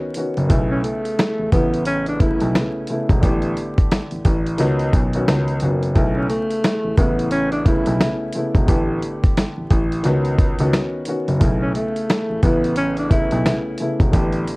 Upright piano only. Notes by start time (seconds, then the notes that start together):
Already playing: D#3 B3 C#4 F#4
0.16 D#3 B3 C#4 F#4
0.49 C#3 A3 B3 E4
1.53 C#3 A3 B3 E4
2.20 C#3 A3 B3 E4
2.55 C#3 A3 B3 E4
2.89 C#3 A3 B3 E4
3.21 D3 A3 B3 G4
4.57 D#3 B3 C#4 F#4
5.14 D#3 B3 C#4 F#4
5.61 D#3 B3 C#4 F#4
5.94 C#3 A3 B3 E4
6.98 C#3 A3 B3 E4
7.65 C#3 A3 B3 E4
8.00 C#3 A3 B3 E4
8.35 C#3 A3 B3 E4
8.66 D3 A3 B3 G4
10.03 D#3 B3 C#4 F#4
10.59 D#3 B3 C#4 F#4
11.07 D#3 B3 C#4 F#4
11.40 C#3 A3 B3 E4
12.43 C#3 A3 B3 E4
13.10 C#3 A3 B3 E4
13.45 C#3 A3 B3 E4
13.80 C#3 A3 B3 E4
14.11 D3 A3 B3 G4